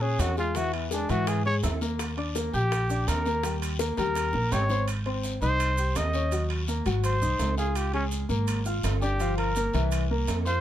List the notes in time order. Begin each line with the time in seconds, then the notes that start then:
Already playing: A#2
0.01 C#4 G#4 C#5 C#6, high bongo
0.19 E2 F#4, high bongo, low bongo, high timbale, low timbale, short guiro, maracas
0.37 G#3 F4 G#4 G#5, high bongo, short guiro, maracas
0.55 E3 E4 F#4 E5, high bongo, high timbale, long guiro, maracas
0.74 B3, high timbale
0.91 G#3 D4 G#4 G#5, high bongo, low timbale, short guiro, maracas
1.09 G#2 E3 E4 F#4 E5, high timbale, short guiro, maracas
1.27 G#4, high bongo, high timbale, long guiro, maracas
1.45 G#3 G#4 C#5 G#5, high bongo
1.63 D#2 E4 E5 E6, high bongo, low bongo, high timbale, low timbale, short guiro, maracas
1.81 A#3 A#4 A#5, high bongo, short guiro, maracas
1.99 high bongo, high timbale, long guiro, maracas
2.17 D4 D5 D6, high timbale
2.35 A#3 A#4 A#5, high bongo, low timbale, short guiro, maracas
2.53 A#1 G4 G5 G6, high bongo, short guiro, maracas
2.72 high bongo, high timbale, maracas
2.90 D4 D5 D6, high bongo, maracas
3.08 D#2 A#4, high bongo, low bongo, high timbale, low timbale, short guiro, maracas
3.26 A#3 A#4 A#5, high bongo, short guiro, maracas
3.44 G3 G4 G5, high bongo, high timbale, long guiro, maracas
3.62 high timbale, maracas
3.79 A#3 A#4 A#5, high bongo, low timbale, short guiro, maracas
3.97 D#2 G3 G4 A#4 G5, high bongo, high timbale, short guiro, maracas
4.15 high bongo, high timbale, long guiro, maracas
4.33 A#1 A#3 A#4 A#5, low bongo
4.52 G#1 G4 C#5 G5 G6, high timbale, low timbale, short guiro, maracas
4.69 C4 C5 C6, low bongo, short guiro, maracas
4.88 high timbale, long guiro, maracas
5.06 C4 C5 C6, high timbale
5.23 low timbale, short guiro, maracas
5.42 C2 D#4 C5 D#5 D#6, short guiro, maracas
5.60 high timbale, long guiro, maracas
5.78 G4 G5 G6, maracas
5.95 D#2 D#5, high timbale, low timbale, short guiro, maracas
6.13 C#4 C#5 C#6, short guiro, maracas
6.31 F#3 F#4 F#5, high timbale, long guiro, maracas
6.50 high timbale
6.68 A#3 A#4 A#5, low timbale, short guiro, maracas
6.86 G#1 F#3 F#4 F#5, high timbale, short guiro, maracas
7.04 C5, high timbale, long guiro, maracas
7.22 C2 D#4 D#5 D#6, maracas
7.39 C#2, high timbale, low timbale, short guiro, maracas
7.58 F4 G#4 F5 F6, short guiro, maracas
7.75 G4, high timbale, long guiro, maracas
7.94 G#3 C#4 G#4 G#5, high timbale
8.11 low timbale, short guiro, maracas
8.29 G#1 A#3 A#4 A#5, short guiro, maracas
8.47 high timbale, long guiro, maracas
8.65 F4 F5 F6, maracas
8.83 G1, high timbale, low timbale, short guiro, maracas
9.02 D4 G4 D5 D6, short guiro, maracas
9.19 F3 F4 F5, high timbale, long guiro, maracas
9.38 A#4, high timbale
9.55 A#3 A#4 A#5, low timbale, short guiro, maracas
9.73 C2 E3 E4 E5, high timbale, short guiro, maracas
9.92 high timbale, long guiro, maracas
10.11 A#3 A#4 A#5
10.28 F2, high timbale, low timbale, short guiro, maracas
10.46 F4 C5 F5 F6, short guiro, maracas